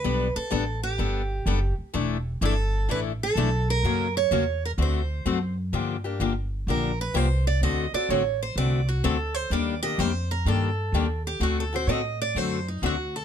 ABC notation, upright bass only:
X:1
M:4/4
L:1/8
Q:"Swing" 1/4=127
K:Glyd
V:1 name="Upright bass" clef=bass
B,,, z A,,,2 G,,,2 F,,, z | E,,,2 G,,,2 A,,,2 B,,,2 | F,,2 E,,2 D,,2 F,,2 | [K:Gm] G,,2 G,,,2 B,,,2 C,,2 |
D,, z A,,,2 C,,2 D,,2 | E,,2 F,,2 G,,2 E,,2 | D,,2 A,,2 ^F,,2 D,,2 |]